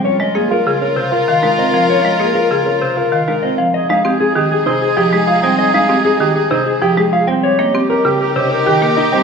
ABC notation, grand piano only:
X:1
M:6/4
L:1/8
Q:1/4=195
K:Fm
V:1 name="Grand piano"
D z A F z D z F z E C z | D z A F z D z F z E C z | z E z A G z E z G z F C | z E z A G z E z G z F C |
z D z B G z D z G z E C |]